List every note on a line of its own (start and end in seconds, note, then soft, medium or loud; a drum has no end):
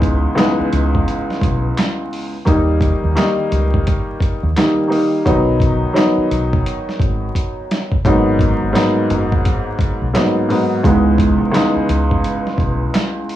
0.00 0.25 C#2 loud
0.00 0.33 C#2 medium
0.00 0.33 E3 medium
0.00 0.33 G#3 medium
0.00 0.34 B3 medium
0.00 0.34 D#4 medium
0.00 kick medium
0.00 closed hi-hat medium
0.35 2.33 C#2 loud
0.35 2.33 E3 medium
0.35 2.33 G#3 medium
0.35 2.34 B3 medium
0.35 2.34 D#4 loud
0.35 snare loud
0.35 clap medium
0.35 closed hi-hat medium
0.60 muted fingered electric bass stroke medium
0.73 1.01 C#2 medium
0.73 closed hi-hat medium
0.95 kick medium
1.08 closed hi-hat medium
1.30 snare soft
1.41 1.70 B1 medium
1.41 kick medium
1.41 closed hi-hat medium
1.77 snare loud
1.77 clap medium
1.77 closed hi-hat loud
2.13 open hi-hat soft
2.45 2.93 D#2 loud
2.45 3.11 D#3 medium
2.45 3.12 G3 medium
2.45 3.12 A#3 medium
2.45 3.13 D#4 loud
2.45 kick loud
2.45 closed hi-hat medium
2.81 kick loud
2.81 closed hi-hat medium
3.04 3.14 D#2 medium
3.15 4.47 D#3 medium
3.15 4.47 G3 medium
3.15 4.48 A#3 medium
3.15 4.48 D#4 loud
3.15 snare loud
3.15 clap medium
3.15 closed hi-hat medium
3.52 3.80 C#2 medium
3.52 closed hi-hat medium
3.74 kick medium
3.87 kick medium
3.87 closed hi-hat medium
4.20 kick medium
4.20 closed hi-hat medium
4.43 4.54 D#2 medium
4.56 4.86 D#3 medium
4.56 4.87 G3 medium
4.56 4.88 A#3 medium
4.56 4.89 D#4 medium
4.56 snare loud
4.56 clap medium
4.56 closed hi-hat loud
4.88 5.22 D#3 medium
4.88 5.23 G3 medium
4.88 5.23 A#3 medium
4.88 5.23 D#4 medium
4.92 open hi-hat medium
5.25 5.83 B1 loud
5.25 5.91 D#3 medium
5.25 5.91 F#3 medium
5.25 5.92 B3 medium
5.25 5.92 D#4 loud
5.25 kick loud
5.25 closed hi-hat medium
5.60 kick loud
5.60 closed hi-hat medium
5.93 7.91 D#3 medium
5.93 7.91 F#3 medium
5.93 7.92 B3 medium
5.93 7.92 D#4 loud
5.93 clap medium
5.93 closed hi-hat medium
5.98 snare loud
6.18 muted fingered electric bass stroke soft
6.31 6.59 B1 medium
6.31 closed hi-hat medium
6.53 kick medium
6.66 closed hi-hat medium
6.89 snare soft
7.00 7.29 G#1 medium
7.00 kick medium
7.00 closed hi-hat medium
7.35 kick medium
7.35 closed hi-hat loud
7.71 snare medium
7.71 closed hi-hat medium
7.92 kick medium
8.05 8.51 G#1 loud
8.05 8.71 G#2 loud
8.05 8.71 F#3 medium
8.05 8.71 A#3 medium
8.05 8.72 B3 medium
8.05 8.72 D#4 loud
8.05 kick loud
8.05 closed hi-hat medium
8.39 kick loud
8.39 closed hi-hat medium
8.62 8.73 G#1 medium
8.72 10.05 G#2 medium
8.72 10.05 F#3 medium
8.72 10.05 A#3 medium
8.72 10.05 B3 medium
8.72 10.06 D#4 loud
8.72 clap medium
8.72 closed hi-hat medium
8.77 snare loud
9.10 9.39 F#1 medium
9.10 closed hi-hat medium
9.32 kick medium
9.45 kick medium
9.45 closed hi-hat medium
9.79 kick medium
9.79 closed hi-hat medium
10.02 10.12 B1 medium
10.13 10.46 G#2 medium
10.13 10.47 F#3 medium
10.13 10.47 A#3 medium
10.13 10.47 B3 medium
10.13 10.48 D#4 medium
10.13 snare loud
10.13 clap medium
10.13 closed hi-hat loud
10.48 10.82 G#2 medium
10.48 10.82 F#3 medium
10.48 10.82 A#3 medium
10.48 10.82 B3 medium
10.48 10.83 D#4 medium
10.48 open hi-hat medium
10.83 11.49 C#2 medium
10.83 11.41 C#2 loud
10.83 11.50 E3 medium
10.83 11.50 G#3 medium
10.83 11.50 B3 medium
10.83 11.50 D#4 medium
10.83 kick loud
10.83 closed hi-hat medium
11.18 kick medium
11.18 closed hi-hat medium
11.52 13.36 C#2 loud
11.52 13.36 E3 medium
11.52 13.36 G#3 medium
11.52 13.36 B3 medium
11.52 13.36 D#4 loud
11.52 clap medium
11.52 closed hi-hat medium
11.56 snare loud
11.76 muted fingered electric bass stroke soft
11.89 12.17 C#2 medium
11.89 closed hi-hat medium
12.11 kick medium
12.24 closed hi-hat medium
12.47 snare soft
12.58 12.87 B1 medium
12.58 kick medium
12.58 closed hi-hat medium
12.94 snare loud
12.94 clap medium
12.94 closed hi-hat loud
13.29 open hi-hat medium